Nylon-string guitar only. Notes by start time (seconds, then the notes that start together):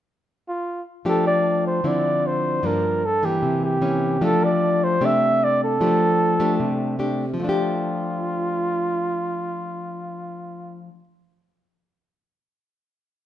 1.05 F3 A3 D4 G4
1.84 D3 F3 C4 E4
2.63 G2 F3 A#3 D4
3.23 E3 A#3
3.42 C3
3.81 E3 A#3 C#4
4.21 F3 A3 D4 G4
5.01 C3 A3 D4 G4
5.81 F3 A3 D4 G4
6.40 A3 D4 G4
6.60 C3
6.99 A3 D4 G4
7.34 F3
7.40 A3
7.44 D4
7.49 G4